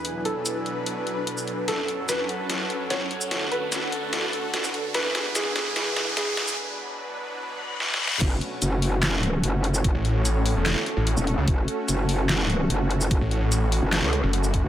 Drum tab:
CC |------------------------------------------------|------------------------------------------------|------------------------------------------------|------------------------------------------------|
HH |x-----x-----x-----x-----x-----x-----x-----x-----|x-----x-----x-----x-----x-----x-----x-----x-----|x-----x-----x-----x-----x-----x-----x-----x-----|x-----x-----x-----x-----x-----x-----x-----x-----|
SH |------------x--------------------------x--------|------------x--------------------------------x--|------------x--------------------------x--------|------------x--------------------------------x--|
CP |------------------------------------------------|------------------------------------------------|------------------------------------------------|------------------------------------------------|
SD |------------------------------------------------|o-----------o-----------o-----------o-----------|o-----------o-----------o-----------o-----------|o-----o-----o-----o-----o-----o-----o-----o-----|
BD |------------------------------------------------|------------------------------------------------|------------------------------------------------|------------------------------------------------|

CC |------------------------------------------------|x-----------------------------------------------|------------------------------------------------|------------------------------------------------|
HH |------------------------------------------------|x-----x-----x-----o-----x-----x-----x-----x-----|x-----x-----x-----o-----x-----x-----x-----x-----|x-----x-----x-----o-----x-----x-----x-----x-----|
SH |------------------------------------------------|------------x--------------------------------x--|------------x--------------------------x--------|------------x--------------------------------x--|
CP |------------------------------------------------|------------------------x-----------------------|------------------------x-----------------------|------------------------x-----------------------|
SD |------------------------------------o---o---o---|------------------------o-----------------------|------------------------o-----------------------|------------------------o-----------------------|
BD |------------------------------------------------|o-----------------------------------------------|o-----------------------------------------------|o-----------------------------------------------|

CC |------------------------------------------------|
HH |x-----x-----x-----o-----x-----x-----x-----x-----|
SH |------------x--------------------------x--------|
CP |------------------------x-----------------------|
SD |------------------------o-----------------------|
BD |o-----------------------------------------o-----|